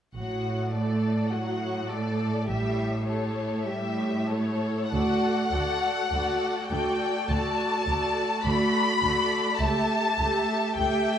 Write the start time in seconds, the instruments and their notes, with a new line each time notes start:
0.16 double bass section A1, cello section A2, viola section F#3, violin section F#4 F#5
0.75 viola section A3, violin section A4 D5
1.33 cello section A2, viola section F#3, violin section F#4 F#5
1.90 viola section A3, violin section A4 D5
2.48 double bass section A1, cello section A2, viola section G3, violin section G4 E5
3.06 viola section A3, violin section A4 C#5
3.66 cello section A2, viola section G3, violin section G4 E5
4.30 viola section A3, violin section A4 C#5
4.91 double bass section D2, cello section D2, viola section A3 F#4, violin section A4 D5 F#5
5.52 double bass section D2, cello section D2, viola section A3 F#4, violin section A4 D5
6.11 double bass section D2, cello section D2, viola section A3 F#4, violin section A4 D5
6.70 double bass section D2, cello section D2, viola section A3 F#4, violin section A4 D5 G5
7.29 double bass section D2, cello section D2, viola section A3 F#4, violin section A4 D5 A5
7.87 cello section D2, double bass section D2, viola section A3 F#4, violin section A4 D5
8.45 double bass section D2, cello section D2, viola section A3 F#4, violin section A4 D5 B5
9.03 double bass section D2, cello section D2, viola section A3 F#4, violin section A4 D5
9.60 cello section C#2, double bass section C#2, viola section A3 G4, violin section A4 E5 A5
10.18 double bass section C#2, cello section C#2, viola section A3 G4, violin section A4 E5
10.78 double bass section C#2, cello section C#2, viola section A3 G4, violin section A4 E5 G5